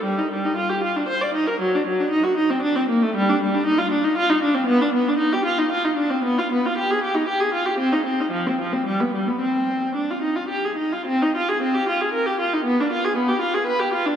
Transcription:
\new Staff \with { instrumentName = "Viola" } { \time 3/4 \key g \minor \tempo 4 = 115 g16 ees'16 g16 ees'16 f'16 g'16 f'16 d'16 c''16 d''16 ees'16 bes'16 | fis16 d'16 fis16 d'16 ees'16 fis'16 ees'16 c'16 d'16 c'16 bes16 a16 | g16 d'16 g16 d'16 ees'16 f'16 d'16 ees'16 f'16 ees'16 d'16 c'16 | \key c \minor b16 d'16 b16 d'16 ees'16 g'16 f'16 ees'16 f'16 ees'16 d'16 c'16 |
b16 f'16 b16 f'16 g'16 aes'16 g'16 ees'16 g'16 aes'16 f'16 g'16 | c'16 ees'16 c'16 ees'16 f16 c'16 f16 c'16 g16 b16 g16 b16 | c'4 d'16 f'16 ees'16 f'16 g'16 aes'16 ees'16 f'16 | c'16 ees'16 f'16 aes'16 c'16 g'16 f'16 aes'16 bes'16 g'16 f'16 ees'16 |
b16 d'16 f'16 aes'16 b16 g'16 f'16 aes'16 b'16 g'16 f'16 d'16 | }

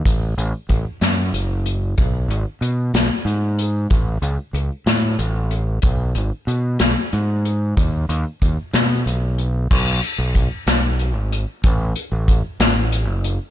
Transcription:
<<
  \new Staff \with { instrumentName = "Fingered electric bass" } { \clef bass \time 6/8 \key gis \phrygian \tempo 4. = 62 a,,8 a,,16 r16 a,,16 r16 fis,8 fis,,4 | b,,8 gis,,16 r16 b,8 b,,16 r16 gis,4 | a,,8 cis,16 r16 cis,16 r16 a,8 a,,4 | b,,8 gis,,16 r16 b,8 b,,16 r16 gis,4 |
dis,8 dis,16 r16 dis,16 r16 b,8 b,,4 | b,,8 r16 b,,8 r16 b,,8. gis,,8 r16 | a,,8 r16 a,,8 r16 a,,8. fis,,8 r16 | }
  \new DrumStaff \with { instrumentName = "Drums" } \drummode { \time 6/8 <hh bd>8 hh8 <hh bd>8 <hh sn>8 hh8 hh8 | <hh bd>8 hh8 hh8 <hh sn>8 hh8 hh8 | <hh bd>8 hh8 hh8 <hh sn>8 hh8 hh8 | <hh bd>8 hh8 hh8 <hh sn>8 hh8 hh8 |
<hh bd>8 hh8 <hh bd>8 <hh sn>8 hh8 hh8 | <cymc bd>8 hh8 <hh bd>8 <hh sn>8 hh8 hh8 | <hh bd>8 hh8 <hh bd>8 <hh sn>8 hh8 hh8 | }
>>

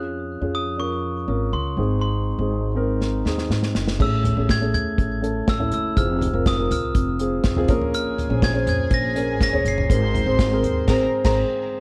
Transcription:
<<
  \new Staff \with { instrumentName = "Glockenspiel" } { \time 4/4 \key aes \mixolydian \tempo 4 = 122 r4 ees'''8 des'''4. c'''4 | c'''2. r4 | e'''4 gis'''8 gis'''4. e'''8 e'''8 | f'''4 ees'''8 f'''2 r8 |
f'''4 aes'''8 aes'''8 bes'''4 bes'''8 c''''8~ | c''''2. r4 | }
  \new Staff \with { instrumentName = "Violin section" } { \time 4/4 \key aes \mixolydian r1 | r1 | r1 | r1 |
<aes' aes''>1 | <c'' c'''>2 <bes' bes''>8 r16 <bes' bes''>8 r8. | }
  \new Staff \with { instrumentName = "Grand piano" } { \time 4/4 \key aes \mixolydian <des' f' aes'>8 r16 <des' f' aes'>8 r16 <des' f' bes'>8. r16 <des' f' bes'>4 <c' ees' aes'>8~ | <c' ees' aes'>8 r16 <c' ees' aes'>8 r16 <c' ees' bes'>8. r16 <c' ees' aes'>4 r8 | <a cis' gis'>8 r16 <a cis' gis'>16 r16 <a cis' gis'>4 r16 <a cis' a'>8 r16 <a cis' e'>8 r16 | <c' f' aes'>8 r16 <c' f' bes'>16 r16 <c' f' bes'>4 r16 <c' f' aes'>8 r16 <c' f' aes'>16 <des' aes' bes'>8~ |
<des' aes' bes'>8 r16 <des' aes' c''>16 r16 <des' aes' c''>4 r16 <des' aes' bes'>8 r16 <des' aes' des''>8 r16 | <c' aes' bes'>8 r16 <c' aes' c''>16 r16 <c' aes' bes'>8. <c' aes' c''>8 r16 <c' aes' c''>8 r8. | }
  \new Staff \with { instrumentName = "Grand piano" } { \clef bass \time 4/4 \key aes \mixolydian r2. r8 aes,8~ | aes,4 r2. | a,4. r2 r8 | r2. r8 bes,8~ |
bes,4 r2. | aes,4. r2 r8 | }
  \new Staff \with { instrumentName = "Upright bass" } { \clef bass \time 4/4 \key aes \mixolydian f,8. f,4.~ f,16 aes,,8 des,8 aes,,8~ | aes,,8. aes,,4.~ aes,,16 ees,8 aes,8 ges,,8 | a,,8. a,,8. e,8 a,,4 a,,8 ges,,8 | f,,8. f,,8. c,8 f,,4 f,,8 bes,,8~ |
bes,,8. bes,,8. f,8 bes,,4 f,,8 ges,,8 | aes,,8. aes,,8. ees,8 aes,,8 r16 aes,,8 r8. | }
  \new DrumStaff \with { instrumentName = "Drums" } \drummode { \time 4/4 r4 r4 r4 r4 | r4 r4 sn8 sn16 sn16 sn16 sn16 sn16 sn16 | <cymc bd>8 <hh tomfh>8 <hh bd sn>8 <hh tomfh>8 <hh bd>8 hh8 <hh bd sn>16 tomfh16 hh8 | <hh bd>8 <hh tomfh>8 <hh bd sn>8 <hh tomfh>8 <hh bd>8 hh8 <hh bd sn>16 tomfh16 <hh bd>16 tomfh16 |
hh8 <hh tomfh>8 <hh bd sn>8 <hh tomfh>8 <hh bd>8 hh8 <hh bd sn>16 tomfh16 hh16 tomfh16 | <hh bd>8 <hh tomfh>8 <hh bd sn>8 <hh tomfh>8 <cymc bd sn>8. <cymc bd sn>16 r4 | }
>>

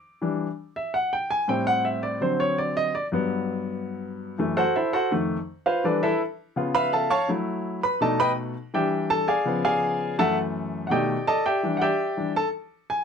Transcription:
<<
  \new Staff \with { instrumentName = "Grand piano" } { \time 4/4 \key e \minor \tempo 4 = 166 r2 e''8 fis''8 g''8 gis''8 | g''8 fis''8 e''8 d''8 c''8 cis''8 d''8 dis''8 | d''8 r2. r8 | r8 <fis' a' c'' fis''>8 <e' a' c'' e''>8 <fis' a' c'' fis''>8 r4. <f' b' c'' f''>8 |
<a' b' d''>8 <e' a' b' e''>8 r4. <b' e'' eis'' b''>8 <a' e'' eis'' a''>8 <cis'' eis'' a'' cis'''>8 | r4. <b' b''>8 <a' d'' dis'' a''>8 <b' dis'' g'' b''>8 r4 | <g' d'' e'' g''>4 <a' a''>8 <gis' d'' f'' gis''>4 <gis' d'' eis'' gis''>4. | <a' e'' fis'' a''>8 r4. <g' d'' dis'' fis'' g''>4 <a' d'' dis'' a''>8 <g' d'' e'' g''>8~ |
<g' d'' e'' g''>8 <g' d'' e'' fis'' g''>4. <a' a''>8 r4 gis''8 | }
  \new Staff \with { instrumentName = "Grand piano" } { \clef bass \time 4/4 \key e \minor r8 <e g d'>8 r2. | <a, g c'>2 <d fis c'>2 | r8 <g, fis b>2.~ <g, fis b>8 | <fis, e a>8 r4. <f, ees a>8 r4. |
<e g d'>8 r4. <cis b eis'>4. r8 | <fis a e'>4. r8 <b, a dis'>4. r8 | <e g d'>4. r8 <cis eis b>2 | <fis, e a>2 <b, dis a>8 r4. |
<e g d'>8 r4 <e g d'>8 r2 | }
>>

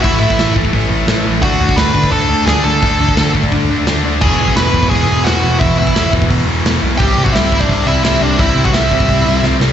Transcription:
<<
  \new Staff \with { instrumentName = "Lead electric guitar" } { \time 4/4 \key d \lydian \tempo 4 = 172 <e' e''>8 <e' e''>4 r2 r8 | <fis' fis''>4 <b' b''>4 <a' a''>4 <gis' gis''>8 <a' a''>8~ | <a' a''>4. r2 r8 | <gis' gis''>4 <b' b''>4 <gis' gis''>4 <fis' fis''>4 |
<e' e''>8 <e' e''>4 r2 r8 | <g' g''>8. <fis' fis''>16 <e' e''>8. <d' d''>8. <e' e''>8 <e' e''>8 <d' d''>8 | <e' e''>8. <fis' fis''>16 <e' e''>2 r4 | }
  \new Staff \with { instrumentName = "Distorted electric guitar" } { \clef bass \time 4/4 \key d \lydian <a, e a>4. <a, e a>4. <a, e a>4 | <d a d'>4. <d a d'>4. <d a d'>4 | <d a d'>4. <d a d'>4. <d a d'>4 | <e, b, e>4. <e, b, e>4. <e, b, e>4 |
<e, b, e>4. <e, b, e>4. <e, b, e>4 | <c g c'>4. <c g c'>4. <c g c'>4 | <c g c'>4. <c g c'>4. <c g c'>4 | }
  \new Staff \with { instrumentName = "Overdriven electric guitar" } { \clef bass \time 4/4 \key d \lydian <a, e a>8 <a, e a>8 <a, e a>8 <a, e a>8 <a, e a>8 <a, e a>8 <a, e a>8 <a, e a>8 | <d a d'>8 <d a d'>8 <d a d'>8 <d a d'>8 <d a d'>8 <d a d'>8 <d a d'>8 <d a d'>8 | <d a d'>8 <d a d'>8 <d a d'>8 <d a d'>8 <d a d'>8 <d a d'>8 <d a d'>8 <d a d'>8 | <e, b, e>8 <e, b, e>8 <e, b, e>8 <e, b, e>8 <e, b, e>8 <e, b, e>8 <e, b, e>8 <e, b, e>8 |
<e, b, e>8 <e, b, e>8 <e, b, e>8 <e, b, e>8 <e, b, e>8 <e, b, e>8 <e, b, e>8 <e, b, e>8 | <c g c'>8 <c g c'>8 <c g c'>8 <c g c'>8 <c g c'>8 <c g c'>8 <c g c'>8 <c g c'>8 | <c g c'>8 <c g c'>8 <c g c'>8 <c g c'>8 <c g c'>8 <c g c'>8 <c g c'>8 <c g c'>8 | }
  \new Staff \with { instrumentName = "Overdriven electric guitar" } { \clef bass \time 4/4 \key d \lydian <a, e a>8 <a, e a>8 <a, e a>8 <a, e a>8 <a, e a>8 <a, e a>8 <a, e a>8 <a, e a>8 | <d a d'>8 <d a d'>8 <d a d'>8 <d a d'>8 <d a d'>8 <d a d'>8 <d a d'>8 <d a d'>8 | <d a d'>8 <d a d'>8 <d a d'>8 <d a d'>8 <d a d'>8 <d a d'>8 <d a d'>8 <d a d'>8 | <e, b, e>8 <e, b, e>8 <e, b, e>8 <e, b, e>8 <e, b, e>8 <e, b, e>8 <e, b, e>8 <e, b, e>8 |
<e, b, e>8 <e, b, e>8 <e, b, e>8 <e, b, e>8 <e, b, e>8 <e, b, e>8 <e, b, e>8 <e, b, e>8 | <c g c'>8 <c g c'>8 <c g c'>8 <c g c'>8 <c g c'>8 <c g c'>8 <c g c'>8 <c g c'>8 | <c g c'>8 <c g c'>8 <c g c'>8 <c g c'>8 <c g c'>8 <c g c'>8 <c g c'>8 <c g c'>8 | }
  \new Staff \with { instrumentName = "Picked electric bass" } { \clef bass \time 4/4 \key d \lydian a,,8 a,,8 a,,8 a,,8 a,,8 a,,8 a,,8 a,,8 | d,8 d,8 d,8 d,8 d,8 d,8 d,8 d,8 | d,8 d,8 d,8 d,8 d,8 d,8 d,8 d,8 | e,,8 e,,8 e,,8 e,,8 e,,8 e,,8 e,,8 e,,8 |
e,,8 e,,8 e,,8 e,,8 e,,8 e,,8 e,,8 b,,8 | c,8 c,8 c,8 c,8 c,8 c,8 c,8 c,8 | c,8 c,8 c,8 c,8 c,8 c,8 c,8 c,8 | }
  \new DrumStaff \with { instrumentName = "Drums" } \drummode { \time 4/4 <hho bd>8. bd16 <hho sn>8 bd16 bd16 <hho bd>4 <hho sn>4 | <hho bd>8. bd16 <hho sn>8 bd16 bd16 <hho bd>4 <hho sn>4 | <hho bd>8. bd16 <hho sn>8 bd16 bd16 <hho bd>4 <hho sn>4 | <cymc bd>8. bd16 <hho sn>8 bd16 bd16 <hho bd>4 <hho sn>4 |
<hho bd>8. bd16 <hho sn>8 bd16 bd16 <hho bd>4 <hho sn>4 | <hho bd>8. bd16 <hho sn>8 bd16 bd16 <hho bd>4 <hho sn>4 | <hho bd>8. bd16 <hho sn>8 bd16 bd16 <hho bd>4 sn8 sn8 | }
>>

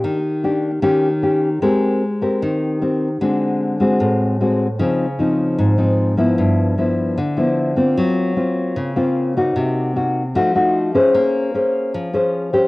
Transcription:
\new Staff \with { instrumentName = "Nylon-string guitar" } { \time 4/4 \key ees \major \tempo 4 = 151 << { <bes d' g'>8 r8 <bes d' g'>8 r8 <bes des' g'>8 r8 <bes des' g'>8 r8 | \key aes \major <c' g' bes'>4 r8 <c' g' bes'>4. <c' g' bes'>8 r8 | <gis c' fis'>4. <gis c' fis'>4. <gis c' fis'>8 r8 | <f c' ees'>8 r8 <f c' ees'>4. <f c' ees'>4 <f ces' fes'>8~ |
<f ces' fes'>4 <f b e'>4 r8 <f b e'>4 <bes c' f'>8~ | <bes c' f'>4 <bes c' f'>4. <bes c' f'>4 <bes ees' ges'>8~ | <bes ees' ges'>4 <bes ees' ges'>8 r8 <a ees' ges'>8 <a ees' ges'>4 <des' aes' c''>8~ | <des' aes' c''>4 <des' aes' c''>4. <des' aes' c''>4 <des' g' c''>8 | } \\ { ees2 ees2 | aes2 ees2 | d2 a,2 | des2 aes,2 |
g,2 d2 | ges2 des2 | c2 f2 | bes2 f2 | } >> }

